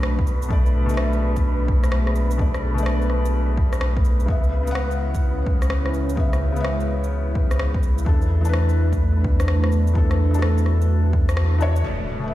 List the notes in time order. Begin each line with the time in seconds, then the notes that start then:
Already playing: B1 B2 A3 B3 D4 F#4 B4 D5
0.03 cross-stick
0.19 kick
0.27 shaker
0.42 shaker
0.49 B2 A3 G#4 D5, kick
0.66 shaker
0.86 B2, shaker
0.90 A3
0.94 E5, cross-stick
1.13 shaker
1.36 kick, shaker
1.68 kick
1.84 cross-stick, shaker
1.92 cross-stick
2.07 cross-stick
2.15 shaker
2.31 shaker
2.37 B2 A3, kick
2.42 D5
2.54 cross-stick, shaker
2.74 B2, shaker
2.79 A3 D5
2.86 cross-stick
3.02 shaker
3.10 cross-stick
3.25 shaker
3.57 kick
3.73 cross-stick, shaker
3.81 cross-stick
3.97 kick
4.05 shaker
4.20 shaker
4.26 C#2 C#3 G#3 B3 C#4 E4 E5, kick
4.44 shaker
4.63 C#3
4.67 B3 F#5, shaker
4.75 cross-stick
4.91 shaker
5.14 kick, shaker
5.47 kick
5.62 cross-stick, shaker
5.70 cross-stick
5.86 cross-stick
5.94 shaker
6.09 shaker
6.16 C#3 B3, kick
6.20 E5
6.33 cross-stick, shaker
6.52 C#3 B3, shaker
6.60 E5
6.64 cross-stick
6.80 shaker
7.04 shaker
7.35 kick
7.51 cross-stick, shaker
7.59 cross-stick
7.74 kick
7.83 shaker
7.98 shaker
8.05 E2 E3 A3 B3 D4 B4, kick
8.09 A4
8.22 shaker
8.41 E3, shaker
8.45 D4 B4
8.53 cross-stick
8.69 shaker
8.93 kick, shaker
9.24 kick
9.40 cross-stick, shaker
9.48 cross-stick
9.64 cross-stick
9.72 shaker
9.87 shaker
9.94 E3 D4 F#4, kick
9.98 A4
10.11 cross-stick, shaker
10.31 E3 D4, shaker
10.39 A4, cross-stick
10.58 shaker
10.66 cross-stick
10.81 shaker
11.13 kick
11.29 cross-stick, shaker
11.37 cross-stick
11.58 E3 D4 C#5, shaker
11.76 shaker
11.82 B2 A3 B3 D4 F#4 B4, crash, impact
11.87 D5
12.19 B2, shaker
12.24 A3 E5